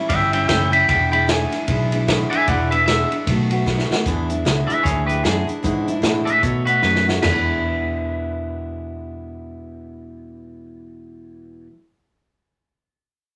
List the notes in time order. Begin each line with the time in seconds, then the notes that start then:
0.09 G1 E3 G3 C#4 E4 E5 G5, kick, ride
0.33 G3 C#4 E4 E5 G5, ride
0.48 F#1 A2 E3 G3 C#4 E4 E5 G5, kick, snare, ride
0.72 G3 C#4 E4 G5 B5, ride
0.88 E1 E2 B2 E3 G#3 D4 E4 G5 B5, kick, ride
1.11 E3 G#3 D4 E4 G5 B5, ride
1.27 E2 B2 E3 G#3 D4 E4 G#5, snare, ride
1.51 E3 G#3 D4 E4, snare, ride
1.67 B1 E3 G#3 D4 E4, kick, ride
1.91 E3 G#3 D4 E4, ride
2.07 E2 B2 E3 G#3 D4 E4, kick, snare, ride
2.30 E3 G#3 D4 E4 E5 G#5, ride
2.47 E1 E2 B2 E3 G#3 D4 E4 D5 F#5, kick, ride
2.71 E3 G#3 D4 E4 B4 E5, ride
2.86 E2 B2 E3 G#3 D4 E4 E5, snare, ride
3.11 E3 G#3 D4 E4, ride
3.27 B1 D#3 A3 B3 F#4, kick, snare, ride
3.51 A3 B3 F#4, ride
3.66 B2 D#3 A3 B3 F#4, kick, snare
3.79 snare
3.91 A3 B3 F#4, snare
4.05 E2 B2 E3 G#3 D4 E4, kick, snare, closed hi-hat
4.29 E3 G#3 D4 E4, closed hi-hat
4.45 C#2 E2 B2 E3 G#3 D4 E4, snare, closed hi-hat
4.67 G#3 D4 E4 B4 E5, closed hi-hat
4.71 E3
4.83 D2 E3 G#3 D4 G#4 C#5, kick, snare, closed hi-hat
4.88 E4
5.06 G#3 D4 E4 G4 B4, closed hi-hat
5.11 E3
5.23 E2 F#2 B2 E3 G#3 D4 E4 G#4, snare, closed hi-hat
5.47 E3 G#3 D4 E4, muted fretless electric bass stroke, closed hi-hat
5.63 E2 G#2 B2 E3 G#3 D4 E4, kick, closed hi-hat
5.88 E3 G#3 D4 E4, closed hi-hat
6.02 E2 A2 B2 E3 G#3 D4 E4, snare, closed hi-hat
6.25 G#3 D4 E4 B4 E5, closed hi-hat
6.29 E3
6.42 B2 D#3 A3 B3 F#4 A4 C#5, kick, closed hi-hat
6.65 B3 F#4 B4, closed hi-hat
6.70 A3
6.82 F#2 B2 D#3 A3 B3 F#4 B4, snare
6.96 snare
7.06 A3 B3 F#4, snare
7.19 E2 B2 B4, snare, floor tom, crash
7.23 E2 E3
7.28 G#3 D4
7.34 E4